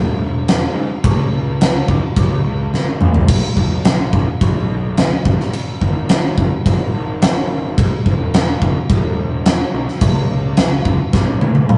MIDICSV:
0, 0, Header, 1, 3, 480
1, 0, Start_track
1, 0, Tempo, 560748
1, 893, Time_signature, 4, 2, 24, 8
1, 10081, End_track
2, 0, Start_track
2, 0, Title_t, "Picked electric bass"
2, 0, Program_c, 0, 34
2, 0, Note_on_c, 0, 28, 97
2, 559, Note_off_c, 0, 28, 0
2, 637, Note_on_c, 0, 44, 100
2, 748, Note_off_c, 0, 44, 0
2, 891, Note_on_c, 0, 37, 107
2, 1102, Note_off_c, 0, 37, 0
2, 1115, Note_on_c, 0, 37, 83
2, 1544, Note_off_c, 0, 37, 0
2, 1612, Note_on_c, 0, 37, 93
2, 1718, Note_off_c, 0, 37, 0
2, 1853, Note_on_c, 0, 37, 100
2, 2064, Note_off_c, 0, 37, 0
2, 2087, Note_on_c, 0, 37, 80
2, 2326, Note_off_c, 0, 37, 0
2, 2331, Note_on_c, 0, 32, 81
2, 2549, Note_off_c, 0, 32, 0
2, 2575, Note_on_c, 0, 34, 92
2, 2807, Note_off_c, 0, 34, 0
2, 2807, Note_on_c, 0, 35, 95
2, 2916, Note_off_c, 0, 35, 0
2, 3052, Note_on_c, 0, 35, 82
2, 3474, Note_off_c, 0, 35, 0
2, 3536, Note_on_c, 0, 35, 104
2, 3642, Note_off_c, 0, 35, 0
2, 3775, Note_on_c, 0, 35, 92
2, 4406, Note_off_c, 0, 35, 0
2, 4494, Note_on_c, 0, 32, 91
2, 4706, Note_off_c, 0, 32, 0
2, 4974, Note_on_c, 0, 32, 88
2, 5395, Note_off_c, 0, 32, 0
2, 5456, Note_on_c, 0, 32, 90
2, 5562, Note_off_c, 0, 32, 0
2, 5697, Note_on_c, 0, 32, 99
2, 5907, Note_off_c, 0, 32, 0
2, 5939, Note_on_c, 0, 32, 85
2, 6657, Note_off_c, 0, 32, 0
2, 6657, Note_on_c, 0, 28, 96
2, 6762, Note_off_c, 0, 28, 0
2, 6897, Note_on_c, 0, 28, 87
2, 7316, Note_off_c, 0, 28, 0
2, 7376, Note_on_c, 0, 28, 108
2, 7481, Note_off_c, 0, 28, 0
2, 7613, Note_on_c, 0, 28, 98
2, 8243, Note_off_c, 0, 28, 0
2, 8336, Note_on_c, 0, 35, 95
2, 8441, Note_off_c, 0, 35, 0
2, 8571, Note_on_c, 0, 37, 107
2, 8782, Note_off_c, 0, 37, 0
2, 8816, Note_on_c, 0, 37, 79
2, 9235, Note_off_c, 0, 37, 0
2, 9287, Note_on_c, 0, 37, 93
2, 9395, Note_off_c, 0, 37, 0
2, 9528, Note_on_c, 0, 35, 90
2, 9741, Note_off_c, 0, 35, 0
2, 9772, Note_on_c, 0, 35, 81
2, 10081, Note_off_c, 0, 35, 0
2, 10081, End_track
3, 0, Start_track
3, 0, Title_t, "Drums"
3, 412, Note_on_c, 9, 49, 64
3, 418, Note_on_c, 9, 38, 106
3, 498, Note_off_c, 9, 49, 0
3, 504, Note_off_c, 9, 38, 0
3, 891, Note_on_c, 9, 36, 127
3, 894, Note_on_c, 9, 49, 68
3, 977, Note_off_c, 9, 36, 0
3, 980, Note_off_c, 9, 49, 0
3, 1378, Note_on_c, 9, 49, 67
3, 1384, Note_on_c, 9, 38, 110
3, 1464, Note_off_c, 9, 49, 0
3, 1470, Note_off_c, 9, 38, 0
3, 1613, Note_on_c, 9, 36, 85
3, 1698, Note_off_c, 9, 36, 0
3, 1853, Note_on_c, 9, 36, 106
3, 1855, Note_on_c, 9, 49, 62
3, 1938, Note_off_c, 9, 36, 0
3, 1940, Note_off_c, 9, 49, 0
3, 2344, Note_on_c, 9, 38, 67
3, 2429, Note_off_c, 9, 38, 0
3, 2573, Note_on_c, 9, 45, 84
3, 2659, Note_off_c, 9, 45, 0
3, 2691, Note_on_c, 9, 43, 88
3, 2777, Note_off_c, 9, 43, 0
3, 2809, Note_on_c, 9, 49, 109
3, 2812, Note_on_c, 9, 36, 127
3, 2895, Note_off_c, 9, 49, 0
3, 2898, Note_off_c, 9, 36, 0
3, 3054, Note_on_c, 9, 36, 75
3, 3139, Note_off_c, 9, 36, 0
3, 3293, Note_on_c, 9, 49, 60
3, 3299, Note_on_c, 9, 38, 118
3, 3378, Note_off_c, 9, 49, 0
3, 3384, Note_off_c, 9, 38, 0
3, 3535, Note_on_c, 9, 36, 87
3, 3621, Note_off_c, 9, 36, 0
3, 3776, Note_on_c, 9, 36, 107
3, 3778, Note_on_c, 9, 49, 52
3, 3862, Note_off_c, 9, 36, 0
3, 3864, Note_off_c, 9, 49, 0
3, 4257, Note_on_c, 9, 49, 59
3, 4263, Note_on_c, 9, 38, 108
3, 4343, Note_off_c, 9, 49, 0
3, 4349, Note_off_c, 9, 38, 0
3, 4498, Note_on_c, 9, 36, 106
3, 4583, Note_off_c, 9, 36, 0
3, 4623, Note_on_c, 9, 38, 35
3, 4709, Note_off_c, 9, 38, 0
3, 4736, Note_on_c, 9, 49, 67
3, 4822, Note_off_c, 9, 49, 0
3, 4977, Note_on_c, 9, 36, 73
3, 5063, Note_off_c, 9, 36, 0
3, 5214, Note_on_c, 9, 49, 60
3, 5220, Note_on_c, 9, 38, 110
3, 5299, Note_off_c, 9, 49, 0
3, 5305, Note_off_c, 9, 38, 0
3, 5458, Note_on_c, 9, 36, 88
3, 5544, Note_off_c, 9, 36, 0
3, 5699, Note_on_c, 9, 36, 104
3, 5701, Note_on_c, 9, 49, 63
3, 5785, Note_off_c, 9, 36, 0
3, 5787, Note_off_c, 9, 49, 0
3, 6179, Note_on_c, 9, 49, 69
3, 6185, Note_on_c, 9, 38, 116
3, 6265, Note_off_c, 9, 49, 0
3, 6271, Note_off_c, 9, 38, 0
3, 6659, Note_on_c, 9, 36, 127
3, 6664, Note_on_c, 9, 49, 66
3, 6745, Note_off_c, 9, 36, 0
3, 6749, Note_off_c, 9, 49, 0
3, 6898, Note_on_c, 9, 36, 80
3, 6984, Note_off_c, 9, 36, 0
3, 7138, Note_on_c, 9, 49, 59
3, 7144, Note_on_c, 9, 38, 118
3, 7223, Note_off_c, 9, 49, 0
3, 7229, Note_off_c, 9, 38, 0
3, 7376, Note_on_c, 9, 36, 86
3, 7462, Note_off_c, 9, 36, 0
3, 7615, Note_on_c, 9, 36, 111
3, 7615, Note_on_c, 9, 49, 53
3, 7701, Note_off_c, 9, 36, 0
3, 7701, Note_off_c, 9, 49, 0
3, 8093, Note_on_c, 9, 49, 61
3, 8099, Note_on_c, 9, 38, 115
3, 8179, Note_off_c, 9, 49, 0
3, 8185, Note_off_c, 9, 38, 0
3, 8459, Note_on_c, 9, 38, 34
3, 8545, Note_off_c, 9, 38, 0
3, 8568, Note_on_c, 9, 49, 72
3, 8571, Note_on_c, 9, 36, 127
3, 8654, Note_off_c, 9, 49, 0
3, 8657, Note_off_c, 9, 36, 0
3, 9046, Note_on_c, 9, 49, 63
3, 9052, Note_on_c, 9, 38, 114
3, 9132, Note_off_c, 9, 49, 0
3, 9138, Note_off_c, 9, 38, 0
3, 9290, Note_on_c, 9, 36, 87
3, 9376, Note_off_c, 9, 36, 0
3, 9530, Note_on_c, 9, 36, 112
3, 9534, Note_on_c, 9, 38, 64
3, 9616, Note_off_c, 9, 36, 0
3, 9620, Note_off_c, 9, 38, 0
3, 9770, Note_on_c, 9, 48, 84
3, 9855, Note_off_c, 9, 48, 0
3, 9886, Note_on_c, 9, 48, 71
3, 9972, Note_off_c, 9, 48, 0
3, 10009, Note_on_c, 9, 47, 92
3, 10081, Note_off_c, 9, 47, 0
3, 10081, End_track
0, 0, End_of_file